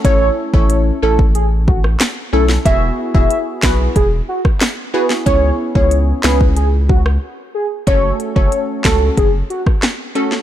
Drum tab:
HH |x---x---x---x---|x---x---x---x---|x---x---x-------|x-x-x-x-x-x-x-x-|
CP |------------x---|------x-----x---|------x---------|------x-----x---|
SD |-----------ro--o|------o----ro--o|------o----r----|------o----ro--o|
BD |o--o---o--o-----|o--o--o-o--o----|o--o---o--o-----|o--o--o-o--o----|